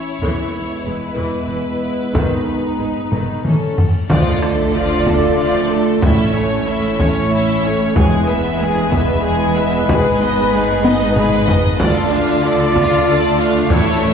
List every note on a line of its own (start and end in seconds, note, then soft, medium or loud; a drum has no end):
0.00 0.18 E3 soft
0.00 0.18 C#4 soft
0.00 2.16 E4 soft
0.00 0.82 C#5 soft
0.21 0.29 E1 medium
0.21 0.30 E2 medium
0.21 0.52 E3 medium
0.21 3.41 G#3 medium
0.21 3.41 B3 medium
0.21 taiko medium
0.85 0.93 E1 soft
0.85 0.95 E2 soft
0.85 0.94 G#3 soft
0.85 3.44 B4 medium
1.16 1.25 E1 medium
1.16 1.26 E2 medium
1.16 1.47 E3 soft
1.48 1.56 E1 soft
1.48 1.58 E2 soft
1.48 1.57 E3 soft
2.14 2.22 G#1 medium
2.14 2.23 G#2 medium
2.14 2.44 D#3 medium
2.14 3.45 D#4 medium
2.14 taiko medium
2.14 reverse cymbal soft
2.78 2.86 G#1 soft
2.78 2.87 G#2 soft
2.78 2.86 G#3 soft
3.11 3.19 G#1 soft
3.11 3.20 G#2 soft
3.11 3.43 D#3 soft
3.11 taiko low-mid medium
3.44 3.52 A1 soft
3.44 3.53 A2 soft
3.44 3.52 E3 soft
3.44 3.76 G3 soft
3.44 3.89 C#4 soft
3.44 3.76 C#4 soft
3.44 3.89 A4 soft
3.44 taiko mid medium
3.78 taiko low medium
4.08 5.99 D2 medium
4.08 5.03 D3 loud
4.08 5.99 D3 medium
4.08 4.40 F3 medium
4.08 7.92 A3 medium
4.08 7.93 A3 medium
4.08 6.00 F4 medium
4.08 4.41 F4 medium
4.08 7.93 A4 medium
4.08 4.39 D5 medium
4.08 5.99 D5 medium
4.08 taiko loud
4.08 sub drop medium
4.12 6.01 F4 medium
4.12 6.01 D5 medium
4.40 4.74 A3 medium
4.40 4.75 D4 medium
4.40 4.74 A4 medium
4.40 taiko rim soft
4.74 5.06 F3 medium
4.74 5.07 F4 medium
4.74 5.07 D5 medium
5.05 5.39 A3 medium
5.05 5.39 D4 medium
5.05 5.38 A4 medium
5.05 taiko medium
5.37 5.69 F3 medium
5.37 5.69 F4 medium
5.37 5.68 D5 medium
5.69 6.04 A3 medium
5.69 6.03 D4 medium
5.69 6.02 A4 medium
6.02 7.92 A1 medium
6.02 7.92 A2 medium
6.02 6.33 C#4 medium
6.02 6.34 E4 medium
6.02 9.85 E4 loud
6.02 9.89 E4 medium
6.02 7.93 C#5 medium
6.02 7.97 C#5 medium
6.02 6.33 E5 medium
6.02 taiko loud
6.35 6.68 A3 medium
6.35 6.68 C#4 medium
6.35 6.67 C#5 medium
6.66 7.00 C#4 medium
6.66 7.00 E4 medium
6.66 6.99 E5 medium
6.99 7.32 A3 medium
6.99 7.32 C#4 medium
6.99 7.33 C#5 medium
6.99 taiko medium
7.32 7.62 C#4 medium
7.32 7.62 E4 medium
7.32 7.62 E5 medium
7.64 7.96 A3 medium
7.64 7.96 C#4 medium
7.64 7.96 C#5 medium
7.95 9.84 E1 medium
7.95 9.85 E2 medium
7.95 8.25 G#3 medium
7.95 11.79 B3 medium
7.95 11.79 G#4 medium
7.95 8.26 G#4 medium
7.95 11.79 B4 medium
7.95 11.64 B4 medium
7.95 8.26 G#5 medium
7.95 taiko loud
7.99 11.64 G#3 loud
8.28 8.60 B3 medium
8.28 8.60 B4 medium
8.28 8.60 E5 medium
8.61 8.93 G#3 medium
8.61 8.93 G#4 medium
8.61 8.92 G#5 medium
8.91 9.24 B3 medium
8.91 9.24 B4 medium
8.91 9.24 E5 medium
8.91 taiko medium
9.23 9.54 G#3 medium
9.23 9.54 G#4 medium
9.23 9.54 G#5 medium
9.56 9.89 B3 medium
9.56 9.89 B4 medium
9.56 9.88 E5 medium
9.88 11.80 G#1 medium
9.88 11.80 G#2 medium
9.88 10.19 G#3 medium
9.88 11.81 D#4 loud
9.88 11.64 D#4 loud
9.88 10.18 G#4 medium
9.88 10.18 B4 medium
9.88 taiko loud
10.21 10.53 B3 medium
10.21 10.53 B4 medium
10.21 10.53 D#5 medium
10.52 10.85 G#3 medium
10.52 10.85 G#4 medium
10.52 10.84 B4 medium
10.84 11.17 B3 medium
10.84 11.16 B4 medium
10.84 11.16 D#5 medium
10.84 taiko high medium
11.16 11.46 G#3 medium
11.16 11.46 G#4 medium
11.16 11.46 B4 medium
11.16 taiko low-mid medium
11.48 11.80 B3 medium
11.48 11.80 B4 medium
11.48 11.80 D#5 medium
11.48 taiko low loud
11.79 13.71 D2 loud
11.79 13.71 D3 loud
11.79 14.14 A3 medium
11.79 14.14 A3 loud
11.79 12.09 F4 medium
11.79 13.71 F4 loud
11.79 13.67 F4 loud
11.79 12.10 A4 medium
11.79 14.14 A4 loud
11.79 12.10 D5 medium
11.79 13.67 D5 loud
11.79 13.71 D5 loud
11.79 taiko loud
12.10 12.43 D4 medium
12.10 12.44 F4 medium
12.10 12.44 F5 medium
12.42 12.75 F4 medium
12.42 12.76 A4 medium
12.42 12.75 D5 medium
12.75 13.07 D4 medium
12.75 13.08 F4 medium
12.75 13.07 F5 medium
12.75 taiko medium
13.07 13.37 F4 medium
13.07 13.37 A4 medium
13.07 13.37 D5 medium
13.38 13.71 D4 medium
13.38 13.72 F4 medium
13.38 13.71 F5 medium
13.69 14.14 A1 medium
13.69 14.14 A2 loud
13.69 14.14 A2 medium
13.69 14.14 E4 loud
13.69 14.00 E4 medium
13.69 14.14 E4 medium
13.69 14.01 A4 medium
13.69 14.14 C#5 loud
13.69 14.01 C#5 medium
13.69 14.14 C#5 loud
13.69 taiko loud
14.03 14.14 C#4 medium
14.03 14.14 C#5 medium
14.03 14.14 E5 medium